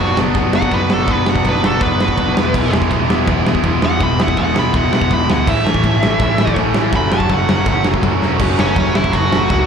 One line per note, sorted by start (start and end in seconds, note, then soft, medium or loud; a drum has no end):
0.00 0.16 F#1 medium
0.00 2.34 F#2 medium
0.00 0.16 B2 medium
0.00 0.16 F#3 medium
0.00 0.17 F#3 loud
0.00 0.18 B3 loud
0.00 0.17 D4 loud
0.00 0.17 F#4 loud
0.00 0.18 F#4 loud
0.17 0.34 F#1 medium
0.17 0.35 B2 medium
0.17 0.36 F#3 medium
0.17 0.35 F#3 medium
0.17 0.37 B3 medium
0.17 0.36 B3 loud
0.17 0.37 D4 medium
0.17 0.37 F#4 loud
0.17 snare loud
0.34 0.53 F#1 medium
0.34 0.53 B2 medium
0.34 0.54 F#3 loud
0.34 0.54 F#3 medium
0.34 0.55 B3 loud
0.34 0.55 B3 medium
0.34 0.55 D4 loud
0.34 kick loud
0.34 ride medium
0.39 0.56 F#4 loud
0.53 0.71 F#1 medium
0.53 0.71 B2 medium
0.53 0.71 F#3 medium
0.53 0.73 F#3 medium
0.53 0.73 B3 medium
0.53 0.74 B3 medium
0.53 0.74 D4 medium
0.53 0.75 F#4 loud
0.53 0.73 F#5 loud
0.53 snare loud
0.62 kick medium
0.71 0.89 F#1 loud
0.71 0.90 B2 medium
0.71 0.90 F#3 medium
0.71 0.91 F#3 loud
0.71 0.91 B3 loud
0.71 0.93 B3 medium
0.71 0.92 D4 loud
0.71 0.93 B4 medium
0.71 kick medium
0.71 ride medium
0.76 0.93 F#4 loud
0.90 1.07 F#1 loud
0.90 1.05 B2 medium
0.90 1.06 F#3 medium
0.90 1.09 F#3 medium
0.90 1.07 B3 medium
0.90 1.10 B3 medium
0.90 1.10 D4 medium
0.90 1.11 A4 medium
0.90 snare loud
0.94 1.11 F#4 medium
1.07 1.42 F#1 loud
1.07 1.23 B2 medium
1.07 1.24 F#3 medium
1.07 1.27 F#3 medium
1.07 1.25 B3 loud
1.07 1.28 B3 loud
1.07 kick loud
1.07 ride medium
1.11 1.28 D4 loud
1.11 1.29 F#4 loud
1.11 1.28 B4 medium
1.24 1.41 B2 medium
1.24 1.42 F#3 medium
1.24 1.42 B3 medium
1.24 snare loud
1.29 1.46 F#3 medium
1.29 1.47 B3 medium
1.29 1.46 D4 medium
1.29 1.47 F#4 medium
1.29 1.46 F#5 medium
1.35 kick medium
1.42 1.62 F#1 medium
1.42 1.61 B2 loud
1.42 1.62 F#3 loud
1.42 1.64 B3 loud
1.42 kick medium
1.42 ride medium
1.47 1.64 F#3 loud
1.47 1.65 B3 medium
1.47 1.65 D4 loud
1.47 1.65 F#4 medium
1.47 1.65 B4 medium
1.62 1.81 F#1 medium
1.62 1.80 B2 medium
1.62 1.80 F#3 medium
1.62 1.81 F#3 medium
1.62 1.81 B3 medium
1.62 1.83 B3 medium
1.62 1.82 D4 medium
1.62 1.82 A4 medium
1.62 snare loud
1.67 1.83 F#4 medium
1.81 1.99 F#1 medium
1.81 1.99 B2 loud
1.81 2.00 F#3 medium
1.81 2.01 B3 loud
1.81 2.01 B3 medium
1.81 2.01 D4 loud
1.81 2.01 F#4 medium
1.81 2.01 B4 medium
1.81 kick loud
1.81 ride medium
2.00 2.16 F#1 medium
2.00 2.17 B2 medium
2.00 2.19 F#3 medium
2.00 2.18 F#3 medium
2.00 2.18 B3 medium
2.00 2.21 B3 medium
2.00 2.20 D4 medium
2.00 2.21 F#4 loud
2.00 2.73 B4 medium
2.00 snare loud
2.08 kick medium
2.17 2.35 F#1 medium
2.17 2.33 B2 medium
2.17 2.34 F#3 loud
2.17 2.37 F#3 medium
2.17 5.49 B3 medium
2.17 kick loud
2.17 ride medium
2.21 2.40 B3 loud
2.21 2.38 D4 loud
2.21 2.38 F#4 loud
2.34 2.54 E1 medium
2.34 2.53 E2 loud
2.34 2.53 B2 medium
2.34 2.54 E3 loud
2.34 snare loud
2.39 2.57 E3 medium
2.39 2.57 G#3 medium
2.39 2.58 B3 medium
2.39 2.58 E4 loud
2.54 2.72 E1 medium
2.54 2.70 E2 medium
2.54 2.70 B2 loud
2.54 2.71 E3 loud
2.54 2.75 E3 medium
2.54 2.76 G#3 loud
2.54 kick loud
2.54 crash loud
2.59 2.75 B3 loud
2.59 2.76 E4 loud
2.71 2.90 E1 medium
2.71 2.89 E2 medium
2.71 2.89 B2 medium
2.71 2.90 E3 medium
2.71 snare loud
2.75 2.91 E3 medium
2.75 2.92 G#3 medium
2.75 2.93 B3 medium
2.75 2.93 E4 medium
2.82 kick medium
2.89 3.08 E1 medium
2.89 3.09 E2 loud
2.89 3.09 B2 medium
2.89 3.09 E3 loud
2.89 3.10 E3 medium
2.89 3.10 G#3 loud
2.89 kick medium
2.89 ride medium
2.94 3.11 B3 medium
2.94 3.12 E4 loud
3.09 3.26 E1 medium
3.09 3.25 E2 medium
3.09 3.26 B2 medium
3.09 3.27 E3 loud
3.09 3.28 E3 medium
3.09 3.28 G#3 medium
3.09 3.28 B3 medium
3.09 3.30 E4 loud
3.09 snare loud
3.26 3.45 E1 medium
3.26 3.44 E2 loud
3.26 3.44 B2 medium
3.26 3.45 E3 loud
3.26 3.46 E3 medium
3.26 3.46 G#3 medium
3.26 3.46 B3 loud
3.26 kick loud
3.26 ride medium
3.30 3.48 E4 loud
3.45 3.63 E1 medium
3.45 3.61 E2 medium
3.45 3.62 B2 medium
3.45 3.63 E3 medium
3.45 3.64 E3 medium
3.45 3.64 G#3 medium
3.45 3.64 B3 loud
3.45 3.66 E4 medium
3.45 snare loud
3.55 kick medium
3.62 3.81 E1 medium
3.62 3.81 E2 medium
3.62 3.81 B2 medium
3.62 3.82 E3 loud
3.62 3.82 G#3 loud
3.62 3.82 B3 loud
3.62 3.84 E4 loud
3.62 kick medium
3.62 ride medium
3.82 4.00 E1 medium
3.82 3.99 E2 medium
3.82 3.98 B2 medium
3.82 3.99 E3 loud
3.82 4.00 E3 medium
3.82 4.01 G#3 medium
3.82 4.02 B3 medium
3.82 4.03 E4 medium
3.82 4.02 F#5 loud
3.82 snare loud
4.00 4.35 E1 medium
4.00 4.17 E2 loud
4.00 4.18 B2 medium
4.00 4.18 E3 loud
4.00 4.20 E3 medium
4.00 4.19 G#3 loud
4.00 4.20 B3 loud
4.00 4.21 E4 loud
4.00 4.20 B5 loud
4.00 kick loud
4.00 ride medium
4.18 4.37 E2 medium
4.18 4.37 B2 medium
4.18 4.38 E3 loud
4.18 4.39 E3 medium
4.18 4.38 G#3 medium
4.18 4.39 B3 medium
4.18 4.40 E4 medium
4.18 4.38 F#5 medium
4.18 snare loud
4.28 kick medium
4.37 4.54 E1 medium
4.37 4.55 E2 loud
4.37 4.56 B2 loud
4.37 4.57 E3 loud
4.37 4.57 G#3 loud
4.37 4.57 B3 loud
4.37 4.58 E4 loud
4.37 4.57 F#5 medium
4.37 kick loud
4.37 ride medium
4.55 4.73 E1 medium
4.55 4.73 E2 medium
4.55 4.73 B2 medium
4.55 4.74 E3 medium
4.55 4.73 E3 medium
4.55 4.75 G#3 medium
4.55 4.75 B3 medium
4.55 4.75 E4 medium
4.55 4.76 B5 medium
4.55 snare loud
4.73 4.91 E1 medium
4.73 4.92 E2 medium
4.73 4.92 B2 loud
4.73 4.92 E3 loud
4.73 4.93 E3 medium
4.73 4.94 G#3 loud
4.73 4.95 B3 medium
4.73 4.95 E4 loud
4.73 4.92 F#5 medium
4.73 kick loud
4.73 ride medium
4.93 5.10 E1 medium
4.93 5.09 E2 medium
4.93 5.09 B2 medium
4.93 5.10 E3 loud
4.93 5.11 E3 medium
4.93 5.12 G#3 medium
4.93 5.12 B3 medium
4.93 5.13 E4 loud
4.93 5.11 F#5 loud
4.93 snare loud
5.01 kick medium
5.10 5.28 E1 medium
5.10 5.28 E2 loud
5.10 5.29 B2 loud
5.10 5.29 E3 loud
5.10 5.30 E3 loud
5.10 5.31 G#3 loud
5.10 5.31 B3 loud
5.10 5.30 B5 medium
5.10 kick loud
5.10 ride medium
5.14 5.31 E4 loud
5.29 5.47 D2 medium
5.29 5.47 E2 medium
5.29 5.47 B2 medium
5.29 5.47 E3 medium
5.29 5.48 G#3 medium
5.29 5.48 B3 medium
5.29 5.48 E4 loud
5.29 5.48 F#5 loud
5.29 snare loud
5.47 5.64 A1 medium
5.47 5.65 A2 loud
5.47 5.66 E3 loud
5.47 5.65 E3 loud
5.47 5.67 A3 loud
5.47 5.67 C#4 loud
5.47 5.67 E4 loud
5.47 6.56 E5 loud
5.47 kick loud
5.47 crash loud
5.66 5.83 A1 medium
5.66 5.83 A2 medium
5.66 5.84 E3 loud
5.66 5.84 E3 medium
5.66 5.85 A3 loud
5.66 5.86 A3 medium
5.66 5.86 C#4 medium
5.66 5.86 E4 loud
5.66 snare loud
5.74 kick medium
5.84 6.01 A1 medium
5.84 6.02 A2 medium
5.84 6.02 A2 loud
5.84 6.03 E3 loud
5.84 6.02 E3 loud
5.84 6.04 A3 loud
5.84 6.05 C#4 loud
5.84 6.04 E4 loud
5.84 kick medium
5.84 ride medium
6.01 6.19 A1 medium
6.01 6.20 A2 medium
6.01 6.21 A2 medium
6.01 6.21 E3 medium
6.01 6.22 E3 medium
6.01 6.22 A3 medium
6.01 6.23 A3 medium
6.01 6.22 C#4 medium
6.01 snare loud
6.06 6.22 E4 loud
6.19 6.37 A1 loud
6.19 6.38 A2 loud
6.19 6.39 A2 loud
6.19 6.39 E3 loud
6.19 6.40 A3 loud
6.19 6.41 A3 loud
6.19 6.40 C#4 loud
6.19 6.40 E4 loud
6.19 kick loud
6.19 ride medium
6.38 6.55 A1 medium
6.38 6.56 A2 medium
6.38 6.57 A2 loud
6.38 6.57 E3 medium
6.38 6.59 A3 medium
6.38 6.59 A3 loud
6.38 6.58 C#4 medium
6.38 6.58 E4 loud
6.38 snare loud
6.47 kick medium
6.56 6.74 A1 medium
6.56 6.74 A2 loud
6.56 6.74 A2 medium
6.56 6.74 E3 loud
6.56 6.76 E3 medium
6.56 6.77 A3 loud
6.56 6.78 C#4 loud
6.56 6.77 E4 loud
6.56 kick loud
6.56 ride medium
6.74 6.92 A1 medium
6.74 6.93 A2 medium
6.74 6.93 E3 medium
6.74 6.94 A3 medium
6.74 9.66 A3 medium
6.74 6.95 C#4 medium
6.74 6.95 E4 medium
6.74 snare loud
6.93 7.27 F#1 medium
6.93 7.12 F#2 medium
6.93 7.12 C#3 loud
6.93 7.11 F#3 loud
6.93 7.12 F#3 loud
6.93 7.11 A3 loud
6.93 7.12 C#4 loud
6.93 7.12 F#4 loud
6.93 7.12 B5 loud
6.93 kick loud
6.93 ride medium
7.12 7.29 F#2 medium
7.12 7.30 C#3 medium
7.12 7.28 F#3 medium
7.12 7.31 F#3 loud
7.12 7.29 A3 medium
7.12 7.29 C#4 loud
7.12 7.30 F#4 loud
7.12 7.31 A5 loud
7.12 snare loud
7.20 kick medium
7.29 7.47 F#1 medium
7.29 7.47 F#2 loud
7.29 7.47 C#3 loud
7.29 7.47 F#3 medium
7.29 7.48 F#3 loud
7.29 7.48 A3 loud
7.29 7.48 C#4 loud
7.29 7.49 F#4 loud
7.29 kick loud
7.29 ride medium
7.34 7.49 F#5 medium
7.48 7.65 F#1 medium
7.48 7.66 F#2 medium
7.48 7.66 C#3 medium
7.48 7.65 F#3 medium
7.48 7.66 F#3 medium
7.48 7.66 A3 medium
7.48 7.67 C#4 medium
7.48 7.67 F#4 medium
7.48 7.86 F#5 loud
7.48 snare loud
7.66 7.84 F#1 medium
7.66 7.85 F#2 loud
7.66 7.86 C#3 loud
7.66 7.84 F#3 loud
7.66 7.86 F#3 loud
7.66 7.84 A3 loud
7.66 7.85 C#4 loud
7.66 7.86 F#4 loud
7.66 kick loud
7.66 ride medium
7.84 8.03 F#1 medium
7.84 8.02 F#2 medium
7.84 8.03 C#3 medium
7.84 8.01 F#3 medium
7.84 8.04 F#3 loud
7.84 8.02 A3 medium
7.84 8.02 C#4 loud
7.84 8.04 F#4 loud
7.84 snare loud
7.94 kick medium
8.02 8.21 F#1 medium
8.02 8.20 F#2 loud
8.02 8.20 C#3 loud
8.02 8.20 F#3 loud
8.02 8.21 F#3 loud
8.02 8.20 A3 loud
8.02 8.21 C#4 loud
8.02 8.22 F#4 loud
8.02 kick loud
8.02 ride medium
8.21 8.39 E1 medium
8.21 8.39 F#2 medium
8.21 8.40 C#3 medium
8.21 8.40 F#3 medium
8.21 8.40 F#3 loud
8.21 8.40 A3 medium
8.21 8.40 C#4 loud
8.21 8.40 F#4 medium
8.21 snare medium
8.39 8.53 F#1 medium
8.39 8.58 F#2 medium
8.39 8.58 C#3 medium
8.39 8.57 F#3 loud
8.39 8.58 F#3 loud
8.39 8.58 A3 medium
8.39 8.58 C#4 loud
8.39 8.59 F#4 loud
8.39 kick loud
8.39 crash loud
8.57 8.73 F#1 medium
8.57 8.76 F#2 medium
8.57 8.76 C#3 loud
8.57 8.77 F#3 medium
8.57 8.78 F#3 loud
8.57 8.78 A3 medium
8.57 8.78 C#4 loud
8.57 8.94 C#4 medium
8.57 8.79 F#4 loud
8.57 8.98 C#5 loud
8.57 snare loud
8.76 8.90 F#1 loud
8.76 8.96 F#2 loud
8.76 8.96 C#3 loud
8.76 8.95 F#3 loud
8.76 8.97 F#3 loud
8.76 8.96 A3 loud
8.76 8.96 C#4 loud
8.76 8.97 F#4 loud
8.76 kick loud
8.76 ride medium
8.95 9.10 F#1 loud
8.95 9.14 F#2 medium
8.95 9.13 C#3 loud
8.95 9.13 F#3 medium
8.95 9.13 A3 medium
8.95 9.14 C#4 loud
8.95 9.14 E4 medium
8.95 9.15 F#4 loud
8.95 9.12 E5 loud
8.95 snare loud
9.04 kick medium
9.12 9.27 F#1 medium
9.12 9.33 F#2 loud
9.12 9.33 C#3 loud
9.12 9.31 F#3 medium
9.12 9.34 F#3 loud
9.12 9.31 A3 loud
9.12 9.31 C#4 loud
9.12 9.66 F#4 medium
9.12 9.33 F#4 loud
9.12 9.65 F#5 loud
9.12 kick loud
9.12 ride medium
9.31 9.46 F#1 medium
9.31 9.50 F#2 medium
9.31 9.50 C#3 loud
9.31 9.50 F#3 medium
9.31 9.51 F#3 medium
9.31 9.50 A3 loud
9.31 9.50 C#4 loud
9.31 9.51 F#4 medium
9.31 snare loud
9.50 9.64 C#2 loud
9.50 9.66 F#2 loud
9.50 9.66 C#3 loud
9.50 9.66 F#3 medium
9.50 9.66 F#3 loud
9.50 9.66 A3 loud
9.50 9.66 C#4 loud
9.50 9.66 F#4 loud
9.50 kick loud
9.50 ride medium